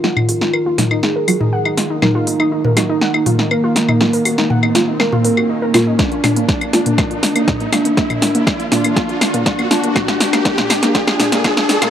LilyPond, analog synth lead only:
\new Staff \with { instrumentName = "Analog synth lead" } { \time 4/4 \key ees \minor \tempo 4 = 121 f'2 aes'2 | ees'4. ees'4. bes4~ | bes2 bes2 | d'4. d'8 d'4. d'8 |
r4. d'8 r4. d'8 | d'4 d'4 d'4 d'4 | }